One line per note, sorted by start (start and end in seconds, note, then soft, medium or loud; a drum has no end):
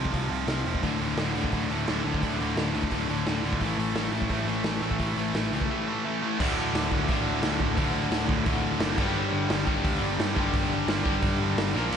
0.00 0.12 F2 medium
0.00 0.11 C3 medium
0.00 0.11 F3 medium
0.05 kick medium
0.11 0.28 C2 medium
0.11 0.29 F2 medium
0.11 0.28 C3 medium
0.11 0.27 F3 medium
0.11 kick medium
0.11 open hi-hat medium
0.28 0.45 C2 medium
0.28 0.45 F2 medium
0.28 0.46 C3 medium
0.28 0.46 F3 medium
0.28 open hi-hat soft
0.46 0.62 C2 medium
0.46 0.63 F2 medium
0.46 0.63 C3 medium
0.46 0.62 F3 loud
0.46 snare loud
0.46 open hi-hat medium
0.63 0.80 E1 medium
0.63 0.81 F2 medium
0.63 0.81 C3 medium
0.63 0.81 F3 medium
0.63 open hi-hat soft
0.75 kick medium
0.81 0.98 D1 medium
0.81 0.99 D2 medium
0.81 0.98 A2 medium
0.81 0.98 D3 loud
0.81 kick medium
0.81 open hi-hat medium
0.98 1.14 D1 medium
0.98 1.16 D2 medium
0.98 1.16 A2 medium
0.98 1.17 D3 medium
0.98 open hi-hat soft
1.16 1.32 D1 medium
1.16 1.35 D2 medium
1.16 1.34 A2 medium
1.16 1.34 D3 loud
1.16 snare loud
1.16 open hi-hat medium
1.34 1.49 D1 medium
1.34 1.51 D2 medium
1.34 1.53 A2 medium
1.34 1.53 D3 medium
1.34 open hi-hat medium
1.44 kick medium
1.52 1.67 D1 medium
1.52 1.71 D2 medium
1.52 1.70 A2 medium
1.52 1.69 D3 medium
1.52 kick medium
1.52 open hi-hat medium
1.69 1.84 D1 medium
1.69 1.87 D2 medium
1.69 1.88 A2 medium
1.69 1.88 D3 medium
1.69 open hi-hat soft
1.88 2.02 D1 medium
1.88 2.05 D2 medium
1.88 2.04 A2 loud
1.88 2.04 D3 loud
1.88 snare loud
1.88 open hi-hat medium
2.05 2.19 D1 medium
2.05 2.20 D2 medium
2.05 2.21 A2 medium
2.05 2.21 D3 medium
2.05 open hi-hat soft
2.14 kick medium
2.21 2.37 D1 medium
2.21 2.39 D2 medium
2.21 2.38 A2 medium
2.21 2.38 D3 medium
2.21 kick medium
2.21 open hi-hat medium
2.39 2.54 D1 medium
2.39 2.54 D2 medium
2.39 2.56 A2 medium
2.39 2.56 D3 medium
2.39 open hi-hat soft
2.55 2.71 D1 medium
2.55 2.73 D2 medium
2.55 2.73 A2 medium
2.55 2.72 D3 loud
2.55 snare loud
2.55 open hi-hat medium
2.74 2.88 D1 medium
2.74 2.89 D2 medium
2.74 2.90 A2 medium
2.74 2.90 D3 medium
2.74 open hi-hat medium
2.83 kick medium
2.90 3.06 D1 medium
2.90 3.09 D2 medium
2.90 3.08 A2 medium
2.90 3.07 D3 loud
2.90 kick medium
2.90 open hi-hat medium
3.09 3.23 D1 medium
3.09 3.24 D2 medium
3.09 3.24 A2 medium
3.09 3.25 D3 medium
3.09 open hi-hat medium
3.25 3.41 D1 medium
3.25 3.43 D2 medium
3.25 3.42 A2 medium
3.25 3.42 D3 loud
3.25 snare loud
3.25 open hi-hat medium
3.43 3.58 D1 medium
3.43 3.59 D2 medium
3.43 3.59 A2 medium
3.43 3.60 D3 medium
3.43 open hi-hat medium
3.53 kick medium
3.60 3.75 A1 medium
3.60 3.79 A2 medium
3.60 3.77 E3 medium
3.60 3.77 A3 medium
3.60 kick medium
3.60 open hi-hat medium
3.77 3.92 A1 medium
3.77 3.94 A2 medium
3.77 3.94 E3 medium
3.77 3.96 A3 loud
3.77 open hi-hat medium
3.94 4.09 A1 medium
3.94 4.12 A2 medium
3.94 4.12 E3 loud
3.94 4.11 A3 loud
3.94 snare loud
3.94 open hi-hat medium
4.11 4.27 A1 medium
4.11 4.27 A2 medium
4.11 4.28 E3 medium
4.11 4.29 A3 medium
4.11 open hi-hat medium
4.22 kick medium
4.28 4.45 A1 medium
4.28 4.47 A2 medium
4.28 4.46 E3 medium
4.28 4.47 A3 medium
4.28 kick medium
4.28 open hi-hat medium
4.46 4.61 A1 medium
4.46 4.62 A2 medium
4.46 4.63 E3 medium
4.46 4.66 A3 medium
4.46 open hi-hat soft
4.64 4.79 A1 medium
4.64 4.81 A2 medium
4.64 4.81 E3 medium
4.64 4.81 A3 medium
4.64 snare loud
4.64 open hi-hat medium
4.81 4.96 A1 medium
4.81 4.97 A2 medium
4.81 4.98 E3 medium
4.81 4.99 A3 medium
4.81 open hi-hat soft
4.91 kick medium
4.98 5.14 A1 medium
4.98 5.17 A2 medium
4.98 5.16 E3 loud
4.98 5.15 A3 medium
4.98 kick medium
4.98 open hi-hat medium
5.16 5.31 A1 medium
5.16 5.33 A2 medium
5.16 5.33 E3 medium
5.16 5.34 A3 medium
5.16 open hi-hat soft
5.34 5.49 A1 medium
5.34 5.53 A2 medium
5.34 5.52 E3 loud
5.34 5.52 A3 loud
5.34 snare loud
5.34 open hi-hat medium
5.53 5.67 C#2 medium
5.53 5.69 A2 medium
5.53 5.70 E3 medium
5.53 5.71 A3 medium
5.53 open hi-hat medium
5.61 kick medium
5.70 5.88 A2 medium
5.70 5.87 E3 medium
5.70 5.86 A3 medium
5.87 6.04 A2 medium
5.87 6.04 E3 medium
5.87 6.05 A3 medium
6.05 6.22 A2 medium
6.05 6.22 E3 medium
6.05 6.21 A3 medium
6.22 6.38 A2 medium
6.22 6.39 E3 medium
6.22 6.39 A3 medium
6.38 6.55 D1 loud
6.38 7.07 D2 medium
6.38 7.07 A2 medium
6.38 7.08 D3 medium
6.38 7.08 A3 loud
6.38 7.09 F#4 loud
6.38 kick loud
6.38 crash loud
6.57 6.72 D1 medium
6.73 6.89 D1 loud
6.73 snare loud
6.73 open hi-hat medium
6.91 7.07 D1 medium
6.91 7.39 D2 medium
6.91 7.42 A2 medium
6.91 7.42 D3 medium
6.91 kick medium
7.08 7.23 A1 loud
7.08 7.74 D2 medium
7.08 7.75 A2 medium
7.08 7.76 D3 medium
7.08 7.77 A3 medium
7.08 7.78 F#4 medium
7.08 kick loud
7.08 open hi-hat medium
7.24 7.40 D1 medium
7.41 7.73 D2 medium
7.41 7.57 D2 medium
7.41 7.75 A2 medium
7.41 7.76 D3 medium
7.41 snare loud
7.41 open hi-hat medium
7.60 7.76 D1 medium
7.60 kick medium
7.75 7.92 D1 loud
7.75 8.43 D2 loud
7.75 8.44 A2 medium
7.75 8.45 D3 loud
7.75 8.46 A3 loud
7.75 kick loud
7.75 open hi-hat medium
7.80 8.47 F#4 loud
7.93 8.09 D1 medium
8.10 8.27 D1 medium
8.10 snare loud
8.10 open hi-hat medium
8.27 8.44 D1 medium
8.27 8.77 D2 medium
8.27 8.79 A2 medium
8.27 8.79 D3 medium
8.27 kick medium
8.44 8.62 D1 loud
8.44 8.96 D2 medium
8.44 8.97 A2 medium
8.44 8.96 D3 medium
8.44 8.98 A3 medium
8.44 kick loud
8.44 open hi-hat medium
8.48 8.98 F#4 medium
8.63 8.79 D1 medium
8.78 8.96 F#1 medium
8.78 8.96 D2 medium
8.78 8.97 A2 medium
8.78 8.97 D3 loud
8.78 snare loud
8.78 open hi-hat medium
8.97 9.14 G1 medium
8.97 9.69 G2 medium
8.97 9.66 D3 loud
8.97 9.68 G3 medium
8.97 9.66 B3 medium
8.97 9.65 D4 loud
8.97 kick loud
8.97 crash medium
9.01 9.64 G4 loud
9.15 9.31 G1 loud
9.33 9.48 G1 medium
9.48 9.65 G1 medium
9.48 10.00 G2 medium
9.48 10.00 D3 medium
9.48 9.99 G3 medium
9.48 snare loud
9.48 open hi-hat medium
9.65 9.83 G1 medium
9.65 10.34 D3 medium
9.65 10.35 G3 medium
9.65 10.35 B3 medium
9.65 10.38 D4 medium
9.65 10.34 G4 medium
9.65 kick medium
9.69 10.33 G2 medium
9.85 10.00 D2 loud
9.85 kick loud
9.85 open hi-hat medium
10.00 10.17 G1 loud
10.00 10.33 G2 medium
10.00 10.35 D3 medium
10.00 10.34 G3 medium
10.18 10.34 G2 medium
10.18 snare loud
10.18 open hi-hat medium
10.35 10.52 G1 medium
10.35 11.04 G2 medium
10.35 11.04 D3 loud
10.35 11.05 G3 medium
10.35 11.04 B3 loud
10.35 11.04 D4 loud
10.35 11.02 G4 loud
10.35 kick medium
10.54 10.68 G1 loud
10.54 kick loud
10.54 open hi-hat medium
10.68 10.85 G1 medium
10.87 11.03 G1 medium
10.87 11.39 G2 medium
10.87 11.40 D3 medium
10.87 11.39 G3 medium
10.87 snare loud
10.87 open hi-hat medium
11.03 11.21 G1 medium
11.03 11.72 G2 medium
11.03 11.73 G3 medium
11.03 11.73 B3 medium
11.03 11.75 D4 medium
11.03 11.73 G4 medium
11.03 kick medium
11.07 11.73 D3 medium
11.22 11.37 G1 medium
11.22 kick loud
11.22 open hi-hat medium
11.38 11.54 G1 medium
11.38 11.74 D3 medium
11.38 11.74 G3 medium
11.43 11.74 G2 medium
11.57 11.72 G1 medium
11.57 snare loud
11.57 open hi-hat medium
11.72 11.90 A#1 medium
11.72 11.97 A#2 medium
11.72 11.97 F3 medium
11.72 11.97 A#3 medium
11.72 11.97 D4 medium
11.72 11.97 F4 loud
11.72 snare medium
11.77 11.97 A#4 medium
11.91 11.97 A#1 loud
11.91 crash loud